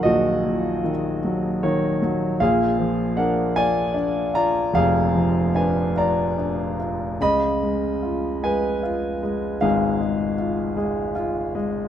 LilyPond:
<<
  \new Staff \with { instrumentName = "Grand piano" } { \time 6/8 \key bes \phrygian \tempo 4. = 51 <ges' ees''>4 r4 des''4 | <aes' f''>4 <bes' ges''>8 <d'' aes''>4 <d'' bes''>8 | <aes' f''>4 <ces'' aes''>8 <d'' bes''>4. | <ees'' ces'''>4. <ces'' aes''>4. |
<aes' f''>2 r4 | }
  \new Staff \with { instrumentName = "Grand piano" } { \clef bass \time 6/8 \key bes \phrygian <bes,, ees ges>8 bes,8 ees8 ges8 ees8 ges8 | <bes,, bes,>8 f8 d'8 f'8 d'8 f'8 | <f,, f,>8 f8 d'8 f'8 d'8 f'8 | <des, des>8 aes8 f'8 aes8 f'8 aes8 |
<aes,, aes,>8 aes8 f'8 aes8 f'8 aes8 | }
>>